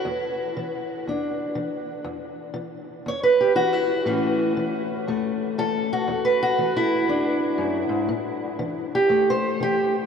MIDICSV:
0, 0, Header, 1, 2, 480
1, 0, Start_track
1, 0, Tempo, 503356
1, 49, Time_signature, 4, 2, 24, 8
1, 9594, End_track
2, 0, Start_track
2, 0, Title_t, "Steel-string acoustic guitar"
2, 0, Program_c, 0, 25
2, 0, Note_on_c, 0, 64, 79
2, 47, Note_on_c, 0, 40, 79
2, 489, Note_off_c, 0, 40, 0
2, 540, Note_on_c, 0, 52, 63
2, 975, Note_off_c, 0, 52, 0
2, 1024, Note_on_c, 0, 40, 53
2, 1037, Note_on_c, 0, 62, 42
2, 1456, Note_off_c, 0, 40, 0
2, 1481, Note_on_c, 0, 52, 58
2, 1648, Note_off_c, 0, 64, 0
2, 1923, Note_off_c, 0, 52, 0
2, 1949, Note_on_c, 0, 40, 76
2, 1955, Note_off_c, 0, 62, 0
2, 2397, Note_off_c, 0, 40, 0
2, 2419, Note_on_c, 0, 52, 62
2, 2872, Note_off_c, 0, 52, 0
2, 2918, Note_on_c, 0, 40, 57
2, 2939, Note_on_c, 0, 73, 89
2, 3080, Note_off_c, 0, 73, 0
2, 3084, Note_on_c, 0, 71, 80
2, 3247, Note_on_c, 0, 67, 69
2, 3360, Note_off_c, 0, 40, 0
2, 3389, Note_off_c, 0, 67, 0
2, 3389, Note_on_c, 0, 52, 62
2, 3393, Note_on_c, 0, 66, 89
2, 3555, Note_off_c, 0, 71, 0
2, 3555, Note_on_c, 0, 64, 93
2, 3836, Note_off_c, 0, 52, 0
2, 3868, Note_on_c, 0, 45, 78
2, 3874, Note_off_c, 0, 66, 0
2, 3876, Note_on_c, 0, 52, 57
2, 3879, Note_on_c, 0, 57, 52
2, 3885, Note_on_c, 0, 61, 53
2, 4315, Note_off_c, 0, 45, 0
2, 4352, Note_off_c, 0, 52, 0
2, 4356, Note_on_c, 0, 52, 63
2, 4799, Note_off_c, 0, 52, 0
2, 4835, Note_off_c, 0, 57, 0
2, 4839, Note_on_c, 0, 40, 57
2, 4846, Note_on_c, 0, 57, 50
2, 5280, Note_off_c, 0, 40, 0
2, 5315, Note_off_c, 0, 64, 0
2, 5323, Note_on_c, 0, 52, 58
2, 5329, Note_on_c, 0, 69, 101
2, 5639, Note_off_c, 0, 61, 0
2, 5653, Note_on_c, 0, 66, 81
2, 5763, Note_off_c, 0, 52, 0
2, 5795, Note_on_c, 0, 40, 75
2, 5801, Note_off_c, 0, 57, 0
2, 5802, Note_off_c, 0, 69, 0
2, 5958, Note_on_c, 0, 71, 91
2, 6116, Note_off_c, 0, 66, 0
2, 6128, Note_on_c, 0, 66, 94
2, 6239, Note_off_c, 0, 40, 0
2, 6280, Note_on_c, 0, 52, 62
2, 6438, Note_off_c, 0, 71, 0
2, 6451, Note_on_c, 0, 64, 94
2, 6722, Note_off_c, 0, 52, 0
2, 6752, Note_on_c, 0, 40, 57
2, 6764, Note_on_c, 0, 62, 44
2, 7199, Note_off_c, 0, 40, 0
2, 7227, Note_on_c, 0, 42, 62
2, 7405, Note_off_c, 0, 66, 0
2, 7520, Note_off_c, 0, 42, 0
2, 7524, Note_on_c, 0, 44, 60
2, 7701, Note_off_c, 0, 62, 0
2, 7710, Note_on_c, 0, 45, 76
2, 7715, Note_off_c, 0, 44, 0
2, 7727, Note_off_c, 0, 64, 0
2, 8160, Note_off_c, 0, 45, 0
2, 8192, Note_on_c, 0, 52, 60
2, 8534, Note_on_c, 0, 67, 89
2, 8641, Note_off_c, 0, 52, 0
2, 8667, Note_on_c, 0, 40, 59
2, 8674, Note_on_c, 0, 57, 45
2, 8850, Note_off_c, 0, 67, 0
2, 8869, Note_on_c, 0, 72, 95
2, 9120, Note_off_c, 0, 40, 0
2, 9157, Note_on_c, 0, 52, 58
2, 9178, Note_off_c, 0, 72, 0
2, 9180, Note_on_c, 0, 67, 95
2, 9468, Note_off_c, 0, 67, 0
2, 9594, Note_off_c, 0, 52, 0
2, 9594, Note_off_c, 0, 57, 0
2, 9594, End_track
0, 0, End_of_file